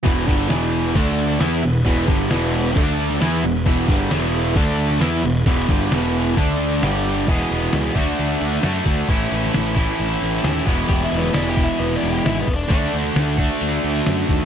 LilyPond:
<<
  \new Staff \with { instrumentName = "Tonewheel organ" } { \time 4/4 \key e \mixolydian \tempo 4 = 133 <b e' gis' b'>2 <a d' a' d''>4 <b e' gis' b'>4~ | <b e' gis' b'>2 <a d' a' d''>4 <b e' gis' b'>4~ | <b e' gis' b'>2 <a d' a' d''>4 <b e' gis' b'>4~ | <b e' gis' b'>2 <a d' a' d''>4 <g d' g' d''>4 |
r1 | r1 | r1 | r1 | }
  \new Staff \with { instrumentName = "Lead electric guitar" } { \time 4/4 \key e \mixolydian r1 | r1 | r1 | r1 |
r1 | r1 | \tuplet 3/2 { g'8 e'8 b8 d'8 g'8 e'8 b8 d'8 g'8 e'8 b8 d'8 } | d'8 r2. r8 | }
  \new Staff \with { instrumentName = "Distorted electric guitar" } { \clef bass \time 4/4 \key e \mixolydian <e, b, e>8 <g, d g>8 <e, b, e>4 <d a d'>4 <e b e'>8 <e, b,>8 | <e, b, e>8 <g, d g>8 <e, b, e>4 <d a d'>4 <e b e'>8 <e, b,>8 | <e, b, e>8 <g, d g>8 <e, b, e>4 <d a d'>4 <e b e'>8 <e, b,>8 | <e, b, e>8 <g, d g>8 <e, b, e>4 <d a d'>4 <g, d g>4 |
<e, b, e gis b gis'>4. <d a d' fis'>4. <d a d' fis'>4 | <a, e a cis' e'>4. <a, e a cis' e'>2 <e, b, e gis b e'>8~ | <e, b, e gis b e'>4 <e, b, e gis b e'>2~ <e, b, e gis b e'>8 r8 | <d a d' fis'>4. <d a d' fis'>2~ <d a d' fis'>8 | }
  \new Staff \with { instrumentName = "Picked electric bass" } { \clef bass \time 4/4 \key e \mixolydian e,,8 g,,8 e,,4 d,4 e,8 e,,8 | e,,8 g,,8 e,,4 d,4 e,8 e,,8 | e,,8 g,,8 e,,4 d,4 e,8 e,,8 | e,,8 g,,8 e,,4 d,4 g,,4 |
e,,8 e,,8 cis,8 d,8 d,8 d,8 fis,8 d,8 | a,,8 a,,8 a,,4 a,,8 a,,8 dis,8 e,,8 | e,,8 e,,8 e,,4 e,,8 e,,8 gis,,8 e,,8 | d,8 d,8 d,4 d,8 d,8 fis,8 dis,8 | }
  \new DrumStaff \with { instrumentName = "Drums" } \drummode { \time 4/4 <hh bd>8 bd8 <hh sn>4 <hh bd>4 <hh sn>4 | <hh bd>8 bd8 <hh sn>4 <hh bd>8. sn16 <hh sn>4 | <hh bd>8 bd8 <hh sn>4 <hh bd>8. sn16 <hh sn>4 | <hh bd>8 bd8 <hh sn>4 <hh bd>16 sn8. <hh sn>4 |
<hh bd>8 hh8 <hh sn>8 <hh bd>8 hh8 hh8 <hh sn>8 <hh bd>8 | <hh bd>8 hh16 sn16 <hh sn>8 <hh bd>8 hh8 hh8 <hh sn>8 <hh bd>8 | <hh bd>8 hh16 sn16 <hh sn>8 <hh bd>8 hh8 hh8 <hh sn>8 <hh bd>8 | <hh bd>8 hh16 sn16 <hh sn>8 <hh bd>8 hh8 hh8 <hh sn>8 <hh bd>8 | }
>>